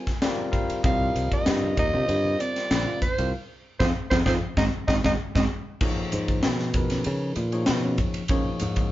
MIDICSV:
0, 0, Header, 1, 7, 480
1, 0, Start_track
1, 0, Tempo, 621762
1, 648, Time_signature, 4, 2, 24, 8
1, 6885, End_track
2, 0, Start_track
2, 0, Title_t, "Soprano saxophone"
2, 0, Program_c, 0, 64
2, 659, Note_on_c, 0, 77, 92
2, 994, Note_off_c, 0, 77, 0
2, 1031, Note_on_c, 0, 75, 84
2, 1352, Note_off_c, 0, 75, 0
2, 1383, Note_on_c, 0, 75, 97
2, 1857, Note_on_c, 0, 74, 93
2, 1868, Note_off_c, 0, 75, 0
2, 2328, Note_off_c, 0, 74, 0
2, 2332, Note_on_c, 0, 72, 93
2, 2553, Note_off_c, 0, 72, 0
2, 2929, Note_on_c, 0, 72, 84
2, 2985, Note_off_c, 0, 72, 0
2, 3168, Note_on_c, 0, 72, 83
2, 3225, Note_off_c, 0, 72, 0
2, 3292, Note_on_c, 0, 72, 81
2, 3351, Note_off_c, 0, 72, 0
2, 3534, Note_on_c, 0, 75, 80
2, 3593, Note_off_c, 0, 75, 0
2, 3766, Note_on_c, 0, 75, 79
2, 3827, Note_off_c, 0, 75, 0
2, 3902, Note_on_c, 0, 75, 87
2, 3954, Note_off_c, 0, 75, 0
2, 4139, Note_on_c, 0, 75, 80
2, 4192, Note_off_c, 0, 75, 0
2, 6885, End_track
3, 0, Start_track
3, 0, Title_t, "Tine electric piano"
3, 0, Program_c, 1, 4
3, 0, Note_on_c, 1, 55, 64
3, 0, Note_on_c, 1, 60, 58
3, 0, Note_on_c, 1, 65, 56
3, 0, Note_on_c, 1, 70, 53
3, 0, Note_on_c, 1, 72, 67
3, 0, Note_on_c, 1, 80, 65
3, 86, Note_off_c, 1, 70, 0
3, 87, Note_off_c, 1, 55, 0
3, 87, Note_off_c, 1, 65, 0
3, 87, Note_off_c, 1, 72, 0
3, 88, Note_off_c, 1, 60, 0
3, 149, Note_off_c, 1, 80, 0
3, 170, Note_on_c, 1, 77, 67
3, 171, Note_on_c, 1, 55, 98
3, 171, Note_on_c, 1, 60, 84
3, 171, Note_on_c, 1, 74, 102
3, 173, Note_on_c, 1, 65, 91
3, 173, Note_on_c, 1, 70, 90
3, 386, Note_off_c, 1, 60, 0
3, 386, Note_off_c, 1, 74, 0
3, 387, Note_off_c, 1, 55, 0
3, 388, Note_off_c, 1, 65, 0
3, 388, Note_off_c, 1, 70, 0
3, 390, Note_off_c, 1, 77, 0
3, 399, Note_on_c, 1, 77, 85
3, 400, Note_on_c, 1, 70, 67
3, 401, Note_on_c, 1, 60, 61
3, 403, Note_on_c, 1, 55, 79
3, 404, Note_on_c, 1, 65, 70
3, 621, Note_off_c, 1, 70, 0
3, 622, Note_off_c, 1, 60, 0
3, 623, Note_off_c, 1, 55, 0
3, 623, Note_off_c, 1, 65, 0
3, 629, Note_off_c, 1, 77, 0
3, 643, Note_on_c, 1, 75, 74
3, 644, Note_on_c, 1, 70, 61
3, 645, Note_on_c, 1, 55, 70
3, 646, Note_on_c, 1, 60, 60
3, 646, Note_on_c, 1, 65, 60
3, 1403, Note_off_c, 1, 75, 0
3, 1404, Note_off_c, 1, 55, 0
3, 1404, Note_off_c, 1, 70, 0
3, 1405, Note_off_c, 1, 60, 0
3, 1405, Note_off_c, 1, 65, 0
3, 1492, Note_on_c, 1, 55, 68
3, 1492, Note_on_c, 1, 70, 57
3, 1494, Note_on_c, 1, 65, 62
3, 1494, Note_on_c, 1, 72, 84
3, 1496, Note_on_c, 1, 60, 60
3, 2352, Note_off_c, 1, 55, 0
3, 2352, Note_off_c, 1, 70, 0
3, 2353, Note_off_c, 1, 65, 0
3, 2353, Note_off_c, 1, 72, 0
3, 2354, Note_off_c, 1, 60, 0
3, 2456, Note_on_c, 1, 55, 67
3, 2457, Note_on_c, 1, 65, 65
3, 2458, Note_on_c, 1, 70, 62
3, 2458, Note_on_c, 1, 77, 88
3, 2459, Note_on_c, 1, 60, 63
3, 2569, Note_off_c, 1, 55, 0
3, 2569, Note_off_c, 1, 65, 0
3, 2570, Note_off_c, 1, 60, 0
3, 2570, Note_off_c, 1, 70, 0
3, 2570, Note_off_c, 1, 77, 0
3, 2942, Note_on_c, 1, 63, 88
3, 2944, Note_on_c, 1, 68, 89
3, 2945, Note_on_c, 1, 65, 86
3, 3011, Note_off_c, 1, 63, 0
3, 3013, Note_off_c, 1, 68, 0
3, 3014, Note_off_c, 1, 65, 0
3, 3177, Note_on_c, 1, 65, 87
3, 3179, Note_on_c, 1, 68, 85
3, 3181, Note_on_c, 1, 63, 93
3, 3249, Note_off_c, 1, 65, 0
3, 3250, Note_off_c, 1, 68, 0
3, 3251, Note_off_c, 1, 63, 0
3, 3285, Note_on_c, 1, 68, 83
3, 3287, Note_on_c, 1, 65, 86
3, 3288, Note_on_c, 1, 63, 87
3, 3367, Note_off_c, 1, 68, 0
3, 3368, Note_off_c, 1, 63, 0
3, 3368, Note_off_c, 1, 65, 0
3, 3530, Note_on_c, 1, 68, 97
3, 3531, Note_on_c, 1, 63, 85
3, 3534, Note_on_c, 1, 66, 90
3, 3609, Note_off_c, 1, 68, 0
3, 3610, Note_off_c, 1, 63, 0
3, 3612, Note_off_c, 1, 66, 0
3, 3767, Note_on_c, 1, 63, 85
3, 3768, Note_on_c, 1, 66, 88
3, 3770, Note_on_c, 1, 68, 88
3, 3848, Note_off_c, 1, 63, 0
3, 3848, Note_off_c, 1, 66, 0
3, 3849, Note_off_c, 1, 68, 0
3, 3901, Note_on_c, 1, 68, 86
3, 3903, Note_on_c, 1, 63, 83
3, 3904, Note_on_c, 1, 66, 77
3, 3971, Note_off_c, 1, 68, 0
3, 3972, Note_off_c, 1, 63, 0
3, 3972, Note_off_c, 1, 66, 0
3, 4148, Note_on_c, 1, 63, 83
3, 4148, Note_on_c, 1, 68, 87
3, 4150, Note_on_c, 1, 66, 93
3, 4215, Note_off_c, 1, 63, 0
3, 4215, Note_off_c, 1, 68, 0
3, 4216, Note_off_c, 1, 66, 0
3, 4484, Note_on_c, 1, 68, 74
3, 4486, Note_on_c, 1, 73, 80
3, 4487, Note_on_c, 1, 58, 77
3, 4489, Note_on_c, 1, 53, 89
3, 4490, Note_on_c, 1, 63, 73
3, 5136, Note_off_c, 1, 68, 0
3, 5138, Note_off_c, 1, 58, 0
3, 5138, Note_off_c, 1, 73, 0
3, 5139, Note_off_c, 1, 53, 0
3, 5139, Note_off_c, 1, 63, 0
3, 5210, Note_on_c, 1, 63, 57
3, 5210, Note_on_c, 1, 71, 79
3, 5211, Note_on_c, 1, 53, 64
3, 5212, Note_on_c, 1, 68, 59
3, 5213, Note_on_c, 1, 70, 66
3, 5751, Note_off_c, 1, 53, 0
3, 5751, Note_off_c, 1, 63, 0
3, 5751, Note_off_c, 1, 71, 0
3, 5752, Note_off_c, 1, 68, 0
3, 5752, Note_off_c, 1, 70, 0
3, 5810, Note_on_c, 1, 53, 81
3, 5810, Note_on_c, 1, 68, 70
3, 5812, Note_on_c, 1, 63, 73
3, 5813, Note_on_c, 1, 73, 82
3, 5814, Note_on_c, 1, 58, 67
3, 6348, Note_off_c, 1, 53, 0
3, 6348, Note_off_c, 1, 63, 0
3, 6348, Note_off_c, 1, 68, 0
3, 6349, Note_off_c, 1, 73, 0
3, 6350, Note_off_c, 1, 58, 0
3, 6409, Note_on_c, 1, 53, 76
3, 6410, Note_on_c, 1, 58, 83
3, 6410, Note_on_c, 1, 63, 72
3, 6410, Note_on_c, 1, 68, 80
3, 6410, Note_on_c, 1, 73, 96
3, 6885, Note_off_c, 1, 53, 0
3, 6885, Note_off_c, 1, 58, 0
3, 6885, Note_off_c, 1, 63, 0
3, 6885, Note_off_c, 1, 68, 0
3, 6885, Note_off_c, 1, 73, 0
3, 6885, End_track
4, 0, Start_track
4, 0, Title_t, "Clean electric guitar"
4, 0, Program_c, 2, 27
4, 297, Note_on_c, 2, 65, 74
4, 436, Note_off_c, 2, 65, 0
4, 653, Note_on_c, 2, 60, 81
4, 791, Note_off_c, 2, 60, 0
4, 1130, Note_on_c, 2, 60, 72
4, 1269, Note_off_c, 2, 60, 0
4, 1498, Note_on_c, 2, 50, 60
4, 1636, Note_off_c, 2, 50, 0
4, 1855, Note_on_c, 2, 60, 78
4, 1992, Note_off_c, 2, 60, 0
4, 2219, Note_on_c, 2, 65, 71
4, 2357, Note_off_c, 2, 65, 0
4, 2937, Note_on_c, 2, 65, 77
4, 2941, Note_on_c, 2, 63, 81
4, 2947, Note_on_c, 2, 60, 75
4, 3010, Note_off_c, 2, 63, 0
4, 3010, Note_off_c, 2, 65, 0
4, 3011, Note_off_c, 2, 60, 0
4, 3179, Note_on_c, 2, 65, 71
4, 3181, Note_on_c, 2, 63, 69
4, 3187, Note_on_c, 2, 60, 64
4, 3250, Note_off_c, 2, 63, 0
4, 3251, Note_off_c, 2, 60, 0
4, 3251, Note_off_c, 2, 65, 0
4, 3286, Note_on_c, 2, 65, 81
4, 3288, Note_on_c, 2, 63, 75
4, 3295, Note_on_c, 2, 60, 67
4, 3368, Note_off_c, 2, 63, 0
4, 3369, Note_off_c, 2, 60, 0
4, 3369, Note_off_c, 2, 65, 0
4, 3527, Note_on_c, 2, 56, 86
4, 3531, Note_on_c, 2, 63, 95
4, 3532, Note_on_c, 2, 60, 90
4, 3608, Note_off_c, 2, 56, 0
4, 3609, Note_off_c, 2, 60, 0
4, 3610, Note_off_c, 2, 63, 0
4, 3765, Note_on_c, 2, 63, 81
4, 3767, Note_on_c, 2, 60, 82
4, 3772, Note_on_c, 2, 56, 76
4, 3847, Note_off_c, 2, 56, 0
4, 3847, Note_off_c, 2, 60, 0
4, 3848, Note_off_c, 2, 63, 0
4, 3891, Note_on_c, 2, 63, 64
4, 3892, Note_on_c, 2, 60, 77
4, 3898, Note_on_c, 2, 56, 79
4, 3965, Note_off_c, 2, 60, 0
4, 3966, Note_off_c, 2, 56, 0
4, 3966, Note_off_c, 2, 63, 0
4, 4129, Note_on_c, 2, 63, 91
4, 4132, Note_on_c, 2, 60, 95
4, 4133, Note_on_c, 2, 56, 81
4, 4204, Note_off_c, 2, 56, 0
4, 4205, Note_off_c, 2, 60, 0
4, 4205, Note_off_c, 2, 63, 0
4, 4487, Note_on_c, 2, 63, 87
4, 4626, Note_off_c, 2, 63, 0
4, 4966, Note_on_c, 2, 65, 65
4, 5106, Note_off_c, 2, 65, 0
4, 5332, Note_on_c, 2, 61, 64
4, 5471, Note_off_c, 2, 61, 0
4, 5683, Note_on_c, 2, 63, 64
4, 5823, Note_off_c, 2, 63, 0
4, 6052, Note_on_c, 2, 61, 71
4, 6192, Note_off_c, 2, 61, 0
4, 6406, Note_on_c, 2, 61, 91
4, 6545, Note_off_c, 2, 61, 0
4, 6885, End_track
5, 0, Start_track
5, 0, Title_t, "Fingered electric bass"
5, 0, Program_c, 3, 33
5, 649, Note_on_c, 3, 36, 92
5, 851, Note_off_c, 3, 36, 0
5, 893, Note_on_c, 3, 36, 80
5, 997, Note_off_c, 3, 36, 0
5, 1139, Note_on_c, 3, 43, 84
5, 1337, Note_off_c, 3, 43, 0
5, 1370, Note_on_c, 3, 39, 73
5, 1476, Note_off_c, 3, 39, 0
5, 1501, Note_on_c, 3, 48, 82
5, 1594, Note_off_c, 3, 48, 0
5, 1613, Note_on_c, 3, 43, 90
5, 1814, Note_off_c, 3, 43, 0
5, 2092, Note_on_c, 3, 34, 75
5, 2197, Note_off_c, 3, 34, 0
5, 2464, Note_on_c, 3, 36, 76
5, 2556, Note_off_c, 3, 36, 0
5, 2936, Note_on_c, 3, 41, 86
5, 3019, Note_off_c, 3, 41, 0
5, 3179, Note_on_c, 3, 41, 88
5, 3261, Note_off_c, 3, 41, 0
5, 3289, Note_on_c, 3, 41, 85
5, 3382, Note_off_c, 3, 41, 0
5, 3529, Note_on_c, 3, 32, 86
5, 3622, Note_off_c, 3, 32, 0
5, 3770, Note_on_c, 3, 32, 78
5, 3862, Note_off_c, 3, 32, 0
5, 3894, Note_on_c, 3, 32, 82
5, 3978, Note_off_c, 3, 32, 0
5, 4135, Note_on_c, 3, 32, 91
5, 4219, Note_off_c, 3, 32, 0
5, 4733, Note_on_c, 3, 44, 71
5, 4963, Note_off_c, 3, 44, 0
5, 4978, Note_on_c, 3, 47, 72
5, 5421, Note_off_c, 3, 47, 0
5, 5455, Note_on_c, 3, 49, 82
5, 5683, Note_off_c, 3, 49, 0
5, 5687, Note_on_c, 3, 46, 70
5, 5919, Note_off_c, 3, 46, 0
5, 5935, Note_on_c, 3, 47, 76
5, 6163, Note_off_c, 3, 47, 0
5, 6652, Note_on_c, 3, 44, 67
5, 6881, Note_off_c, 3, 44, 0
5, 6885, End_track
6, 0, Start_track
6, 0, Title_t, "Muted fingered electric bass strokes"
6, 536, Note_on_c, 9, 29, 36
6, 614, Note_off_c, 9, 29, 0
6, 2332, Note_on_c, 9, 29, 32
6, 2410, Note_off_c, 9, 29, 0
6, 6885, End_track
7, 0, Start_track
7, 0, Title_t, "Drums"
7, 54, Note_on_c, 9, 38, 26
7, 55, Note_on_c, 9, 36, 57
7, 132, Note_off_c, 9, 36, 0
7, 132, Note_off_c, 9, 38, 0
7, 169, Note_on_c, 9, 38, 107
7, 169, Note_on_c, 9, 51, 71
7, 246, Note_off_c, 9, 38, 0
7, 246, Note_off_c, 9, 51, 0
7, 408, Note_on_c, 9, 44, 59
7, 408, Note_on_c, 9, 51, 48
7, 409, Note_on_c, 9, 36, 63
7, 411, Note_on_c, 9, 63, 53
7, 411, Note_on_c, 9, 64, 60
7, 485, Note_off_c, 9, 44, 0
7, 485, Note_off_c, 9, 51, 0
7, 486, Note_off_c, 9, 36, 0
7, 488, Note_off_c, 9, 63, 0
7, 488, Note_off_c, 9, 64, 0
7, 538, Note_on_c, 9, 51, 62
7, 615, Note_off_c, 9, 51, 0
7, 649, Note_on_c, 9, 36, 107
7, 649, Note_on_c, 9, 51, 70
7, 726, Note_off_c, 9, 36, 0
7, 726, Note_off_c, 9, 51, 0
7, 893, Note_on_c, 9, 44, 76
7, 893, Note_on_c, 9, 51, 55
7, 970, Note_off_c, 9, 44, 0
7, 970, Note_off_c, 9, 51, 0
7, 1016, Note_on_c, 9, 36, 70
7, 1016, Note_on_c, 9, 51, 56
7, 1093, Note_off_c, 9, 36, 0
7, 1094, Note_off_c, 9, 51, 0
7, 1128, Note_on_c, 9, 38, 101
7, 1128, Note_on_c, 9, 51, 74
7, 1131, Note_on_c, 9, 64, 55
7, 1205, Note_off_c, 9, 38, 0
7, 1205, Note_off_c, 9, 51, 0
7, 1208, Note_off_c, 9, 64, 0
7, 1260, Note_on_c, 9, 63, 55
7, 1337, Note_off_c, 9, 63, 0
7, 1369, Note_on_c, 9, 44, 77
7, 1369, Note_on_c, 9, 51, 54
7, 1370, Note_on_c, 9, 36, 71
7, 1374, Note_on_c, 9, 64, 67
7, 1446, Note_off_c, 9, 44, 0
7, 1446, Note_off_c, 9, 51, 0
7, 1447, Note_off_c, 9, 36, 0
7, 1452, Note_off_c, 9, 64, 0
7, 1611, Note_on_c, 9, 51, 71
7, 1688, Note_off_c, 9, 51, 0
7, 1734, Note_on_c, 9, 63, 64
7, 1812, Note_off_c, 9, 63, 0
7, 1854, Note_on_c, 9, 44, 73
7, 1854, Note_on_c, 9, 51, 57
7, 1931, Note_off_c, 9, 44, 0
7, 1931, Note_off_c, 9, 51, 0
7, 1977, Note_on_c, 9, 38, 26
7, 1977, Note_on_c, 9, 51, 46
7, 2054, Note_off_c, 9, 38, 0
7, 2054, Note_off_c, 9, 51, 0
7, 2092, Note_on_c, 9, 38, 107
7, 2092, Note_on_c, 9, 51, 75
7, 2169, Note_off_c, 9, 38, 0
7, 2169, Note_off_c, 9, 51, 0
7, 2331, Note_on_c, 9, 36, 66
7, 2333, Note_on_c, 9, 44, 65
7, 2333, Note_on_c, 9, 51, 49
7, 2335, Note_on_c, 9, 63, 62
7, 2335, Note_on_c, 9, 64, 61
7, 2408, Note_off_c, 9, 36, 0
7, 2410, Note_off_c, 9, 44, 0
7, 2410, Note_off_c, 9, 51, 0
7, 2412, Note_off_c, 9, 63, 0
7, 2412, Note_off_c, 9, 64, 0
7, 2458, Note_on_c, 9, 51, 64
7, 2535, Note_off_c, 9, 51, 0
7, 2935, Note_on_c, 9, 38, 80
7, 2935, Note_on_c, 9, 64, 89
7, 2936, Note_on_c, 9, 36, 86
7, 3012, Note_off_c, 9, 38, 0
7, 3012, Note_off_c, 9, 64, 0
7, 3013, Note_off_c, 9, 36, 0
7, 3175, Note_on_c, 9, 38, 91
7, 3176, Note_on_c, 9, 36, 94
7, 3178, Note_on_c, 9, 64, 82
7, 3253, Note_off_c, 9, 36, 0
7, 3253, Note_off_c, 9, 38, 0
7, 3255, Note_off_c, 9, 64, 0
7, 3288, Note_on_c, 9, 38, 83
7, 3289, Note_on_c, 9, 36, 87
7, 3295, Note_on_c, 9, 64, 93
7, 3365, Note_off_c, 9, 38, 0
7, 3366, Note_off_c, 9, 36, 0
7, 3372, Note_off_c, 9, 64, 0
7, 3529, Note_on_c, 9, 36, 90
7, 3530, Note_on_c, 9, 38, 86
7, 3531, Note_on_c, 9, 64, 80
7, 3606, Note_off_c, 9, 36, 0
7, 3607, Note_off_c, 9, 38, 0
7, 3608, Note_off_c, 9, 64, 0
7, 3768, Note_on_c, 9, 36, 78
7, 3768, Note_on_c, 9, 64, 80
7, 3769, Note_on_c, 9, 38, 71
7, 3845, Note_off_c, 9, 64, 0
7, 3846, Note_off_c, 9, 36, 0
7, 3846, Note_off_c, 9, 38, 0
7, 3891, Note_on_c, 9, 64, 94
7, 3893, Note_on_c, 9, 38, 68
7, 3895, Note_on_c, 9, 36, 76
7, 3968, Note_off_c, 9, 64, 0
7, 3970, Note_off_c, 9, 38, 0
7, 3972, Note_off_c, 9, 36, 0
7, 4133, Note_on_c, 9, 38, 86
7, 4134, Note_on_c, 9, 36, 83
7, 4135, Note_on_c, 9, 64, 85
7, 4211, Note_off_c, 9, 36, 0
7, 4211, Note_off_c, 9, 38, 0
7, 4212, Note_off_c, 9, 64, 0
7, 4482, Note_on_c, 9, 49, 87
7, 4485, Note_on_c, 9, 36, 111
7, 4559, Note_off_c, 9, 49, 0
7, 4563, Note_off_c, 9, 36, 0
7, 4724, Note_on_c, 9, 44, 78
7, 4724, Note_on_c, 9, 51, 57
7, 4729, Note_on_c, 9, 64, 58
7, 4801, Note_off_c, 9, 44, 0
7, 4801, Note_off_c, 9, 51, 0
7, 4806, Note_off_c, 9, 64, 0
7, 4850, Note_on_c, 9, 51, 58
7, 4851, Note_on_c, 9, 36, 68
7, 4856, Note_on_c, 9, 63, 66
7, 4927, Note_off_c, 9, 51, 0
7, 4928, Note_off_c, 9, 36, 0
7, 4933, Note_off_c, 9, 63, 0
7, 4962, Note_on_c, 9, 38, 107
7, 4962, Note_on_c, 9, 51, 69
7, 5039, Note_off_c, 9, 38, 0
7, 5039, Note_off_c, 9, 51, 0
7, 5089, Note_on_c, 9, 38, 31
7, 5166, Note_off_c, 9, 38, 0
7, 5200, Note_on_c, 9, 44, 82
7, 5200, Note_on_c, 9, 51, 58
7, 5204, Note_on_c, 9, 36, 76
7, 5210, Note_on_c, 9, 64, 77
7, 5277, Note_off_c, 9, 44, 0
7, 5277, Note_off_c, 9, 51, 0
7, 5281, Note_off_c, 9, 36, 0
7, 5287, Note_off_c, 9, 64, 0
7, 5325, Note_on_c, 9, 38, 30
7, 5325, Note_on_c, 9, 51, 57
7, 5341, Note_on_c, 9, 63, 58
7, 5403, Note_off_c, 9, 38, 0
7, 5403, Note_off_c, 9, 51, 0
7, 5418, Note_off_c, 9, 63, 0
7, 5437, Note_on_c, 9, 51, 77
7, 5514, Note_off_c, 9, 51, 0
7, 5679, Note_on_c, 9, 44, 64
7, 5679, Note_on_c, 9, 51, 55
7, 5689, Note_on_c, 9, 63, 65
7, 5756, Note_off_c, 9, 44, 0
7, 5756, Note_off_c, 9, 51, 0
7, 5766, Note_off_c, 9, 63, 0
7, 5807, Note_on_c, 9, 51, 46
7, 5884, Note_off_c, 9, 51, 0
7, 5915, Note_on_c, 9, 38, 110
7, 5915, Note_on_c, 9, 51, 83
7, 5992, Note_off_c, 9, 38, 0
7, 5992, Note_off_c, 9, 51, 0
7, 6159, Note_on_c, 9, 44, 66
7, 6159, Note_on_c, 9, 51, 52
7, 6163, Note_on_c, 9, 36, 63
7, 6170, Note_on_c, 9, 64, 67
7, 6236, Note_off_c, 9, 44, 0
7, 6236, Note_off_c, 9, 51, 0
7, 6240, Note_off_c, 9, 36, 0
7, 6247, Note_off_c, 9, 64, 0
7, 6284, Note_on_c, 9, 51, 65
7, 6361, Note_off_c, 9, 51, 0
7, 6395, Note_on_c, 9, 51, 78
7, 6403, Note_on_c, 9, 36, 105
7, 6472, Note_off_c, 9, 51, 0
7, 6480, Note_off_c, 9, 36, 0
7, 6636, Note_on_c, 9, 44, 86
7, 6636, Note_on_c, 9, 51, 66
7, 6648, Note_on_c, 9, 64, 59
7, 6713, Note_off_c, 9, 44, 0
7, 6713, Note_off_c, 9, 51, 0
7, 6725, Note_off_c, 9, 64, 0
7, 6763, Note_on_c, 9, 51, 60
7, 6768, Note_on_c, 9, 36, 74
7, 6840, Note_off_c, 9, 51, 0
7, 6845, Note_off_c, 9, 36, 0
7, 6885, End_track
0, 0, End_of_file